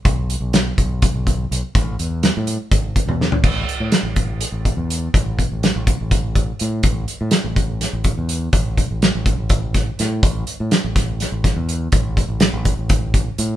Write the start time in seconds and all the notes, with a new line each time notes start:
0.05 B1, kick, closed hi-hat
0.30 closed hi-hat
0.41 B1
0.53 snare, closed hi-hat
0.78 B1, kick, closed hi-hat
1.02 kick, closed hi-hat
1.14 B1
1.27 kick, closed hi-hat
1.51 B1, closed hi-hat
1.75 A1, kick, closed hi-hat
1.99 E2, closed hi-hat
2.23 snare, closed hi-hat
2.37 A2
2.47 closed hi-hat
2.72 G#1, kick, closed hi-hat
2.96 kick, closed hi-hat
3.07 E2, high tom
3.21 snare
3.32 floor tom
3.44 A1, kick, crash
3.69 closed hi-hat
3.80 A2
3.92 snare, closed hi-hat
4.03 A1
4.16 kick, closed hi-hat
4.41 closed hi-hat
4.52 A1
4.65 kick, closed hi-hat
4.77 E2
4.90 closed hi-hat
5.14 A1, kick, closed hi-hat
5.39 kick, closed hi-hat
5.52 A1
5.63 snare, closed hi-hat
5.76 A1
5.87 kick, closed hi-hat
6.01 A1
6.11 kick, closed hi-hat
6.35 kick, closed hi-hat
6.59 A2, closed hi-hat
6.83 A1, kick, closed hi-hat
7.08 closed hi-hat
7.21 A2
7.31 snare, closed hi-hat
7.44 A1
7.56 kick, closed hi-hat
7.81 snare, closed hi-hat
7.93 A1
8.04 kick, closed hi-hat
8.18 E2
8.29 closed hi-hat
8.53 A1, kick, closed hi-hat
8.77 kick, closed hi-hat
8.91 A1
9.02 snare, closed hi-hat
9.15 A1
9.26 kick, closed hi-hat
9.39 A1
9.49 kick, closed hi-hat
9.74 kick, snare, closed hi-hat
9.99 A2, snare, closed hi-hat
10.23 A1, kick, closed hi-hat
10.47 closed hi-hat
10.60 A2
10.71 snare, closed hi-hat
10.84 A1
10.96 kick, snare, closed hi-hat
11.20 snare, closed hi-hat
11.32 A1
11.44 kick, snare, closed hi-hat
11.56 E2
11.69 closed hi-hat
11.92 A1, kick, closed hi-hat
12.17 kick, closed hi-hat
12.29 A1
12.40 snare, closed hi-hat
12.53 A1
12.65 kick, closed hi-hat
12.77 A1
12.89 kick, closed hi-hat
13.14 kick, closed hi-hat
13.38 A2, closed hi-hat